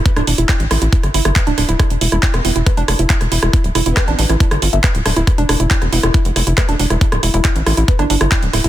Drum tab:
HH |xxoxxxoxxxoxxxox|xxoxxxoxxxoxxxox|xxoxxxoxxxoxxxox|xxoxxxoxxxoxxxox|
CP |----x-------x---|----x-------x---|----x-------x---|----x-------x---|
SD |-r--r-r--r-r--r-|r--r-r--r-r--r-r|--r-r--r-r--r-r-|r-r--r-r--r-r--r|
BD |o---o---o---o---|o---o---o---o---|o---o---o---o---|o---o---o---o---|

HH |xxoxxxoxxxoxxxox|
CP |----x-------x---|
SD |-r--r-r--r-r--r-|
BD |o---o---o---o---|